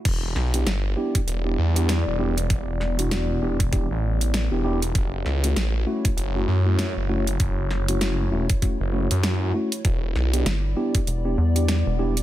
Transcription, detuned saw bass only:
X:1
M:4/4
L:1/16
Q:"Swing 16ths" 1/4=98
K:Edor
V:1 name="Detuned saw bass" clef=bass
E,,,2 B,,,2 G,,,2 z2 E,,,2 E,,3 E,,,3 | E,,,6 E,,,3 A,,,4 E,,,3 | F,,,2 C,,2 A,,,2 z2 F,,,2 F,,3 F,,,3 | F,,,6 E,,, z2 F,,,2 F,,3 z2 |
E,,,2 B,,,2 z12 |]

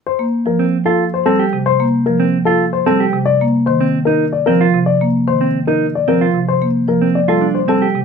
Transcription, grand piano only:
X:1
M:3/4
L:1/16
Q:1/4=112
K:Bb
V:1 name="Grand piano"
c z2 B z2 A z c A z2 | c z2 B z2 A z c A z2 | d z2 c z2 B z d B z2 | d z2 c z2 B z d B z2 |
c z2 B z d A z c A z2 |]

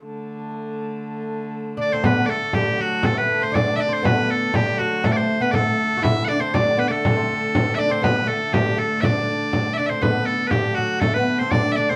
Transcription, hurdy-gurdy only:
X:1
M:2/4
L:1/8
Q:1/4=120
K:Dmix
V:1 name="Hurdy-gurdy" clef=bass
[D,A,]4- | [D,A,]4 | [D,A,]4- | [D,A,]4- |
[D,A,]4- | [D,A,]4 | [D,A,]4- | [D,A,]4- |
[D,A,]4- | [D,A,]4 | [D,A,]4- | [D,A,]4 |]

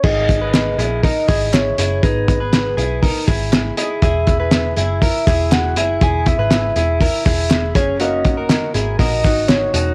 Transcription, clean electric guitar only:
X:1
M:4/4
L:1/16
Q:1/4=121
K:G#m
V:1 name="Clean electric guitar"
[DG]3 [GB]3 [EG]2 [DA]2 [EG]4 [EG]2 | [DG]3 [GB]3 [EG]2 [DA]2 [EG]4 [EG]2 | [EG]3 [GB]3 [EG]2 [EA]2 [EG]4 [EG]2 | [EG]3 [GB]3 [EG]2 [EA]2 [EG]4 [CG]2 |
[CF]3 [FA]3 [EG]2 [FA]2 [DF]4 [DF]2 |]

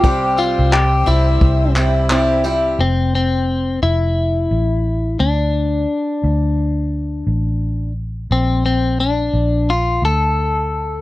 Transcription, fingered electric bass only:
X:1
M:4/4
L:1/16
Q:"Swing 16ths" 1/4=87
K:F
V:1 name="Fingered electric bass" clef=bass
C,,3 C,,3 C,,2 C,,8 | F,,,6 F,,,4 A,,,4 D,,2- | D,,2 z2 D,,6 A,,,6 | B,,,6 B,,,4 D,,6 |]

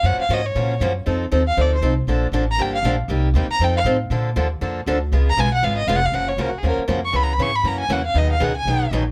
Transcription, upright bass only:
X:1
M:4/4
L:1/8
Q:"Swing" 1/4=237
K:Bb
V:1 name="Upright bass" clef=bass
_G,, z _A,,2 B,,2 G,,2 | F,,2 E,,2 D,,2 C,,2 | B,,,2 A,,,2 G,,,2 B,,,2 | C,,2 E,, z F,,2 A,,2 |
B,,2 E,,2 F,,2 D,,2 | _D,,2 _C,,2 _A,,,2 F,,,2 | [K:F#] F,,,2 C,, z D,, z E,,2 | C,,2 G,,2 F,,2 =E,,2 |
D,,2 C,,2 B,,,2 A,,,2 |]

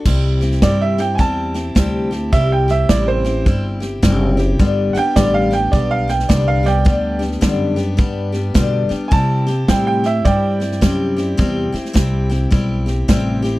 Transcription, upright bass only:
X:1
M:4/4
L:1/8
Q:"Swing" 1/4=106
K:Clyd
V:1 name="Upright bass" clef=bass
C,,2 G,,2 E,,2 D,,2 | C,,2 A,,,2 G,,,2 F,,,2 | G,,, z A,,,2 B,,,2 C,,2 | D,,2 F,,2 G,,2 B,, z |
C,2 A,,2 G,,2 F,,2 | E,, z C,,2 B,,,2 A,,,2 |]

